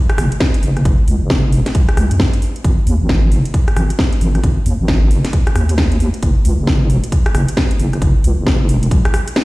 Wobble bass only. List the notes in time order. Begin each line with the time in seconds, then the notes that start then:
0.18 F#1
0.63 F#1
0.85 F#1
1.08 C#2
1.22 F#1
1.53 E1
1.75 C#2
1.97 C#2
2.11 F#2
2.65 G#1
2.87 D#2
3.01 G#1
3.32 F#1
3.76 G#1
4.21 G#1
4.44 G#1
4.66 D#2
4.80 G#1
5.11 F#1
5.56 D#2
6.23 F#1
6.45 C#2
6.59 F#1
6.90 E1
7.35 F#1
7.79 F#1
8.02 F#1
8.24 C#2
8.38 F#1
8.69 E1
8.91 C#2